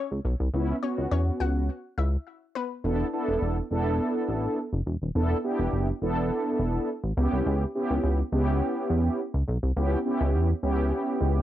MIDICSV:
0, 0, Header, 1, 4, 480
1, 0, Start_track
1, 0, Tempo, 576923
1, 446, Time_signature, 4, 2, 24, 8
1, 9501, End_track
2, 0, Start_track
2, 0, Title_t, "Synth pluck"
2, 0, Program_c, 0, 84
2, 0, Note_on_c, 0, 61, 71
2, 0, Note_on_c, 0, 73, 91
2, 311, Note_off_c, 0, 73, 0
2, 315, Note_off_c, 0, 61, 0
2, 686, Note_on_c, 0, 73, 79
2, 693, Note_on_c, 0, 61, 65
2, 796, Note_off_c, 0, 73, 0
2, 800, Note_off_c, 0, 61, 0
2, 926, Note_on_c, 0, 73, 87
2, 933, Note_on_c, 0, 61, 73
2, 1134, Note_off_c, 0, 73, 0
2, 1138, Note_off_c, 0, 61, 0
2, 1166, Note_on_c, 0, 78, 87
2, 1173, Note_on_c, 0, 66, 69
2, 1276, Note_off_c, 0, 78, 0
2, 1280, Note_off_c, 0, 66, 0
2, 1646, Note_on_c, 0, 76, 75
2, 1653, Note_on_c, 0, 64, 58
2, 1756, Note_off_c, 0, 76, 0
2, 1760, Note_off_c, 0, 64, 0
2, 2126, Note_on_c, 0, 71, 86
2, 2133, Note_on_c, 0, 59, 70
2, 2236, Note_off_c, 0, 71, 0
2, 2240, Note_off_c, 0, 59, 0
2, 9501, End_track
3, 0, Start_track
3, 0, Title_t, "Analog polysynth"
3, 0, Program_c, 1, 90
3, 444, Note_on_c, 1, 59, 89
3, 446, Note_on_c, 1, 61, 87
3, 448, Note_on_c, 1, 64, 104
3, 631, Note_off_c, 1, 59, 0
3, 632, Note_off_c, 1, 61, 0
3, 633, Note_off_c, 1, 64, 0
3, 684, Note_on_c, 1, 59, 77
3, 686, Note_on_c, 1, 61, 67
3, 688, Note_on_c, 1, 66, 79
3, 1415, Note_off_c, 1, 59, 0
3, 1416, Note_off_c, 1, 61, 0
3, 1417, Note_off_c, 1, 66, 0
3, 2364, Note_on_c, 1, 59, 93
3, 2365, Note_on_c, 1, 62, 87
3, 2366, Note_on_c, 1, 64, 87
3, 2368, Note_on_c, 1, 69, 101
3, 2551, Note_off_c, 1, 59, 0
3, 2551, Note_off_c, 1, 62, 0
3, 2552, Note_off_c, 1, 64, 0
3, 2553, Note_off_c, 1, 69, 0
3, 2603, Note_on_c, 1, 59, 92
3, 2604, Note_on_c, 1, 62, 86
3, 2606, Note_on_c, 1, 64, 83
3, 2608, Note_on_c, 1, 69, 100
3, 2976, Note_off_c, 1, 59, 0
3, 2977, Note_off_c, 1, 62, 0
3, 2978, Note_off_c, 1, 64, 0
3, 2979, Note_off_c, 1, 69, 0
3, 3084, Note_on_c, 1, 59, 100
3, 3085, Note_on_c, 1, 62, 90
3, 3086, Note_on_c, 1, 64, 94
3, 3087, Note_on_c, 1, 69, 110
3, 3815, Note_off_c, 1, 59, 0
3, 3816, Note_off_c, 1, 62, 0
3, 3816, Note_off_c, 1, 64, 0
3, 3817, Note_off_c, 1, 69, 0
3, 4284, Note_on_c, 1, 59, 94
3, 4285, Note_on_c, 1, 62, 82
3, 4287, Note_on_c, 1, 64, 85
3, 4288, Note_on_c, 1, 69, 106
3, 4471, Note_off_c, 1, 59, 0
3, 4471, Note_off_c, 1, 62, 0
3, 4472, Note_off_c, 1, 64, 0
3, 4473, Note_off_c, 1, 69, 0
3, 4524, Note_on_c, 1, 59, 88
3, 4525, Note_on_c, 1, 62, 84
3, 4526, Note_on_c, 1, 64, 85
3, 4527, Note_on_c, 1, 67, 101
3, 4896, Note_off_c, 1, 59, 0
3, 4897, Note_off_c, 1, 62, 0
3, 4898, Note_off_c, 1, 64, 0
3, 4898, Note_off_c, 1, 67, 0
3, 5003, Note_on_c, 1, 59, 101
3, 5004, Note_on_c, 1, 62, 93
3, 5006, Note_on_c, 1, 64, 93
3, 5007, Note_on_c, 1, 69, 111
3, 5735, Note_off_c, 1, 59, 0
3, 5735, Note_off_c, 1, 62, 0
3, 5736, Note_off_c, 1, 64, 0
3, 5737, Note_off_c, 1, 69, 0
3, 5964, Note_on_c, 1, 59, 99
3, 5965, Note_on_c, 1, 61, 85
3, 5966, Note_on_c, 1, 64, 86
3, 5968, Note_on_c, 1, 67, 105
3, 6355, Note_off_c, 1, 59, 0
3, 6355, Note_off_c, 1, 61, 0
3, 6356, Note_off_c, 1, 64, 0
3, 6357, Note_off_c, 1, 67, 0
3, 6444, Note_on_c, 1, 59, 96
3, 6445, Note_on_c, 1, 61, 81
3, 6447, Note_on_c, 1, 64, 84
3, 6448, Note_on_c, 1, 67, 104
3, 6817, Note_off_c, 1, 59, 0
3, 6817, Note_off_c, 1, 61, 0
3, 6818, Note_off_c, 1, 64, 0
3, 6819, Note_off_c, 1, 67, 0
3, 6924, Note_on_c, 1, 59, 103
3, 6925, Note_on_c, 1, 61, 94
3, 6926, Note_on_c, 1, 64, 91
3, 6928, Note_on_c, 1, 67, 109
3, 7655, Note_off_c, 1, 59, 0
3, 7656, Note_off_c, 1, 61, 0
3, 7656, Note_off_c, 1, 64, 0
3, 7657, Note_off_c, 1, 67, 0
3, 8124, Note_on_c, 1, 59, 97
3, 8125, Note_on_c, 1, 61, 86
3, 8127, Note_on_c, 1, 64, 84
3, 8128, Note_on_c, 1, 67, 102
3, 8311, Note_off_c, 1, 59, 0
3, 8312, Note_off_c, 1, 61, 0
3, 8312, Note_off_c, 1, 64, 0
3, 8313, Note_off_c, 1, 67, 0
3, 8363, Note_on_c, 1, 59, 92
3, 8365, Note_on_c, 1, 61, 88
3, 8366, Note_on_c, 1, 64, 83
3, 8367, Note_on_c, 1, 67, 100
3, 8736, Note_off_c, 1, 59, 0
3, 8737, Note_off_c, 1, 61, 0
3, 8738, Note_off_c, 1, 64, 0
3, 8738, Note_off_c, 1, 67, 0
3, 8843, Note_on_c, 1, 59, 97
3, 8845, Note_on_c, 1, 61, 91
3, 8846, Note_on_c, 1, 64, 90
3, 8847, Note_on_c, 1, 67, 111
3, 9501, Note_off_c, 1, 59, 0
3, 9501, Note_off_c, 1, 61, 0
3, 9501, Note_off_c, 1, 64, 0
3, 9501, Note_off_c, 1, 67, 0
3, 9501, End_track
4, 0, Start_track
4, 0, Title_t, "Analog synth bass"
4, 0, Program_c, 2, 38
4, 93, Note_on_c, 2, 37, 88
4, 168, Note_off_c, 2, 37, 0
4, 206, Note_on_c, 2, 35, 95
4, 290, Note_off_c, 2, 35, 0
4, 334, Note_on_c, 2, 36, 97
4, 408, Note_off_c, 2, 36, 0
4, 446, Note_on_c, 2, 37, 101
4, 605, Note_off_c, 2, 37, 0
4, 813, Note_on_c, 2, 37, 91
4, 888, Note_off_c, 2, 37, 0
4, 926, Note_on_c, 2, 40, 103
4, 1085, Note_off_c, 2, 40, 0
4, 1166, Note_on_c, 2, 37, 92
4, 1408, Note_off_c, 2, 37, 0
4, 1646, Note_on_c, 2, 37, 100
4, 1804, Note_off_c, 2, 37, 0
4, 2366, Note_on_c, 2, 28, 116
4, 2525, Note_off_c, 2, 28, 0
4, 2733, Note_on_c, 2, 28, 105
4, 2808, Note_off_c, 2, 28, 0
4, 2846, Note_on_c, 2, 28, 95
4, 3005, Note_off_c, 2, 28, 0
4, 3086, Note_on_c, 2, 28, 99
4, 3329, Note_off_c, 2, 28, 0
4, 3566, Note_on_c, 2, 33, 97
4, 3725, Note_off_c, 2, 33, 0
4, 3933, Note_on_c, 2, 30, 88
4, 4008, Note_off_c, 2, 30, 0
4, 4047, Note_on_c, 2, 28, 93
4, 4130, Note_off_c, 2, 28, 0
4, 4174, Note_on_c, 2, 27, 86
4, 4248, Note_off_c, 2, 27, 0
4, 4286, Note_on_c, 2, 28, 103
4, 4445, Note_off_c, 2, 28, 0
4, 4653, Note_on_c, 2, 28, 101
4, 4728, Note_off_c, 2, 28, 0
4, 4766, Note_on_c, 2, 30, 97
4, 4925, Note_off_c, 2, 30, 0
4, 5007, Note_on_c, 2, 28, 93
4, 5249, Note_off_c, 2, 28, 0
4, 5486, Note_on_c, 2, 28, 100
4, 5645, Note_off_c, 2, 28, 0
4, 5853, Note_on_c, 2, 33, 87
4, 5928, Note_off_c, 2, 33, 0
4, 5965, Note_on_c, 2, 37, 113
4, 6050, Note_off_c, 2, 37, 0
4, 6093, Note_on_c, 2, 36, 90
4, 6168, Note_off_c, 2, 36, 0
4, 6206, Note_on_c, 2, 37, 115
4, 6365, Note_off_c, 2, 37, 0
4, 6572, Note_on_c, 2, 37, 105
4, 6647, Note_off_c, 2, 37, 0
4, 6686, Note_on_c, 2, 37, 95
4, 6845, Note_off_c, 2, 37, 0
4, 6925, Note_on_c, 2, 37, 97
4, 7168, Note_off_c, 2, 37, 0
4, 7405, Note_on_c, 2, 40, 96
4, 7564, Note_off_c, 2, 40, 0
4, 7772, Note_on_c, 2, 37, 87
4, 7847, Note_off_c, 2, 37, 0
4, 7885, Note_on_c, 2, 35, 103
4, 7969, Note_off_c, 2, 35, 0
4, 8012, Note_on_c, 2, 36, 88
4, 8087, Note_off_c, 2, 36, 0
4, 8125, Note_on_c, 2, 37, 105
4, 8284, Note_off_c, 2, 37, 0
4, 8493, Note_on_c, 2, 37, 107
4, 8605, Note_on_c, 2, 40, 95
4, 8618, Note_off_c, 2, 37, 0
4, 8764, Note_off_c, 2, 40, 0
4, 8845, Note_on_c, 2, 37, 91
4, 9088, Note_off_c, 2, 37, 0
4, 9325, Note_on_c, 2, 37, 96
4, 9484, Note_off_c, 2, 37, 0
4, 9501, End_track
0, 0, End_of_file